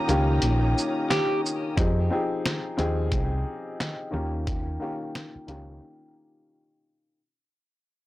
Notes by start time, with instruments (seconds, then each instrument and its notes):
Already playing: upright piano D#3 A#3 C#4 F4 G4, string section G4 C#5 A#5 D#6
0.08 fingered electric bass C#2, upright piano D#3 A#3 C#4 F4 G4, closed hi-hat, shaker
0.42 fingered electric bass A#1, closed hi-hat
0.78 shaker
1.10 clean electric guitar G4, snare, closed hi-hat
1.46 shaker
1.76 fingered electric bass F2, upright piano F3 C4 D#4 G4 G#4, kick, closed hi-hat
2.10 upright piano F3 C4 D#4 G4 G#4
2.46 snare, closed hi-hat
2.77 fingered electric bass D#2, upright piano F3 C4 D#4 G4 G#4, closed hi-hat
3.12 fingered electric bass C2, kick, closed hi-hat
3.80 snare, closed hi-hat
4.11 fingered electric bass D#2, upright piano D#3 A#3 C#4 F4 G4
4.47 kick, closed hi-hat
4.79 upright piano D#3 A#3 C#4 F4 G4
5.15 snare, closed hi-hat
5.36 muted fingered electric bass stroke
5.47 fingered electric bass C#2, upright piano D#3 A#3 C#4 F4 G4, closed hi-hat